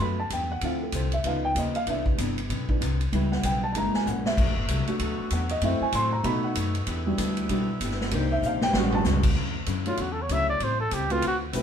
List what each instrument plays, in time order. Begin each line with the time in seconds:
0.00 upright bass F#2, hollow-body jazz guitar G2 F#3 B3 D4, grand piano A3 B3 F#4 B5
0.20 grand piano A5
0.30 upright bass E2, hollow-body jazz guitar G2 F#3 B3 D4, grand piano G5, kick, hi-hat pedal, ride
0.52 grand piano F#5
0.61 upright bass D2, hollow-body jazz guitar D3 C4 F4 A4, grand piano F3 C4 E4 F5, kick, ride
0.83 grand piano A4
0.92 upright bass C2, hollow-body jazz guitar D3 C4 F4 A4, grand piano C5, kick, hi-hat pedal, ride
1.12 grand piano E5, ride
1.24 upright bass C#2, hollow-body jazz guitar C#3 F3 B3 D#4, grand piano F3 B3 D#4 F5, kick, ride
1.45 grand piano G5
1.55 upright bass D#2, hollow-body jazz guitar C#3 F3 B3 D#4, grand piano D#5, kick, hi-hat pedal, ride
1.75 grand piano F5, ride
1.86 upright bass C2, hollow-body jazz guitar C3 E3 B3 D4, grand piano E3 B3 D4 E5, kick, ride
2.06 kick
2.18 upright bass G1, hollow-body jazz guitar C3 E3 B3 D4, kick, hi-hat pedal, ride
2.38 ride
2.49 upright bass B1, hollow-body jazz guitar C3 E3 B3 D4, kick, ride
2.69 grand piano E3 B3 D4, kick
2.81 upright bass C2, hollow-body jazz guitar C3 E3 B3 D4, kick, hi-hat pedal, ride
3.01 ride
3.12 upright bass C#2, hollow-body jazz guitar C#3 G3 B3 E4, grand piano G3 B3 E4, kick, ride
3.32 grand piano F#5, snare
3.43 upright bass B1, hollow-body jazz guitar C#3 G3 B3 E4, grand piano G5, kick, hi-hat pedal, ride
3.64 grand piano A5
3.73 upright bass F#1, hollow-body jazz guitar F#2 E3, grand piano G#3 A#3 E4 A5, kick, ride
3.77 hollow-body jazz guitar A#3 C#4, grand piano A#5
3.94 grand piano G#5, snare
4.06 upright bass A#1, hollow-body jazz guitar F#2 E3 A#3 C#4, grand piano F#5, hi-hat pedal
4.25 grand piano E5, snare
4.37 upright bass B1, hollow-body jazz guitar B2 F#3 A3 D4, saxophone section D3 A3 B3 F#4, kick, crash
4.47 upright bass A1
4.57 upright bass F#1
4.68 upright bass C2, hollow-body jazz guitar B2 F#3 A3 D4, kick, hi-hat pedal, ride
4.87 grand piano A3 D4 F#4, muted upright bass stroke, ride
4.99 upright bass D2, hollow-body jazz guitar B2 F#3 A3 D4, kick, ride
5.19 muted upright bass stroke
5.30 upright bass E2, hollow-body jazz guitar B2 F#3 A3 D4, grand piano F#5, kick, hi-hat pedal, ride
5.49 grand piano D#5, ride
5.61 upright bass F#2, hollow-body jazz guitar F#2 E3 A3 C4, saxophone section E3 A3 C4 F#4, grand piano A3 C4 E4 E5, kick, ride
5.81 grand piano G#5, muted upright bass stroke
5.92 hollow-body jazz guitar F#2 E3 A3 C4, upright bass A2, grand piano C6, kick, hi-hat pedal, ride
6.13 grand piano A#5
6.23 upright bass B2, hollow-body jazz guitar B2 F#3 A3 D#4, saxophone section D#3 B3 F#4, grand piano A3 D#4 F#4 B5, kick, ride
6.44 grand piano F#5
6.55 upright bass F#2, hollow-body jazz guitar B2 F#3 A3 D#4, kick, hi-hat pedal, ride
6.75 ride
6.86 upright bass E2, saxophone section D3 G3 E4, hollow-body jazz guitar E3 B3 D4 G4, kick, ride
7.07 grand piano G3 D4 F#4
7.18 upright bass D2, hollow-body jazz guitar E3 B3 D4 G4, kick, hi-hat pedal, ride
7.37 ride
7.49 upright bass B1, hollow-body jazz guitar E3 B3 D4 G4, grand piano G3 D4 F#4, kick, ride
7.80 upright bass G1, hollow-body jazz guitar E3 B3, kick, hi-hat pedal, ride
7.84 hollow-body jazz guitar D4 G4
7.91 snare
8.01 snare
8.11 upright bass C2, hollow-body jazz guitar C3 A#3 D#4, saxophone section D#3 A#3 C4 G4, grand piano A#3 D4 D#4, kick, ride
8.15 hollow-body jazz guitar G4
8.32 grand piano E5
8.42 upright bass A#1, hollow-body jazz guitar C3 A#3, grand piano F5, hi-hat pedal
8.47 hollow-body jazz guitar D#4 G4
8.61 grand piano G5, snare
8.73 upright bass A1, hollow-body jazz guitar A2 G3, saxophone section C#3 G3 B3 F#4, grand piano G3 B3 C#4 F#4 F#5, snare
8.77 hollow-body jazz guitar C#4 F#4
8.92 grand piano A5, floor tom
9.04 upright bass C#2, hollow-body jazz guitar A2 G3 C#4 F#4, snare, hi-hat pedal
9.23 kick, crash
9.35 upright bass D2, hollow-body jazz guitar D3 F#3 C#4 E4, kick
9.66 upright bass F#2, hollow-body jazz guitar D3 F#3 C#4 E4, kick, hi-hat pedal, ride
9.85 grand piano A3 D4 E4 F#4 C#5, trumpet F4, ride
9.97 upright bass E2, hollow-body jazz guitar D3 F#3 C#4 E4, kick, ride
10.01 trumpet F#4
10.12 trumpet A4
10.22 trumpet C#5
10.29 upright bass C#2, hollow-body jazz guitar D3 F#3 C#4 E4, grand piano A3 D4 E4 F#4 C#5, trumpet E5, kick, hi-hat pedal, ride
10.50 trumpet D5
10.60 upright bass A1, hollow-body jazz guitar A2 G3 C4 E4, trumpet C5, kick, ride
10.80 trumpet A4
10.91 upright bass C#2, hollow-body jazz guitar A2 G3 C4 E4, trumpet G4, kick, hi-hat pedal, ride
11.10 grand piano A3 C4 E4 F#4 B4, trumpet F4, ride
11.22 upright bass D2, hollow-body jazz guitar D3 C4 F#4 B4, kick, ride
11.27 trumpet F#4
11.53 upright bass B1, hollow-body jazz guitar D3 C4 F#4 B4, grand piano A3 C4 E4 F#4 B4, kick, hi-hat pedal, ride